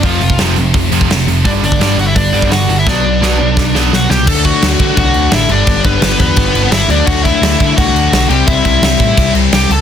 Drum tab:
CC |----------------|----------------|----------------|x-x-x-x-x-x-x-x-|
HH |o-o-o-o-o-o-o-o-|o-o-o-o-o-o-o-o-|----------------|----------------|
SD |----o-------o---|----o-------o---|o---o---o-o-o-o-|----o-------o---|
BD |o--o----o--o----|o--o----o--o----|o-------o-------|o-o---o-o-------|

CC |x-x-x-x-x-x-x-x-|x-x-x-x-x-x-x-x-|x-x-x-x-x-x-x-x-|
HH |----------------|----------------|----------------|
SD |----o-------o---|----o-------o---|----o-------o---|
BD |o-o---o-o-------|o-o---o-o-------|o-o---o-o-------|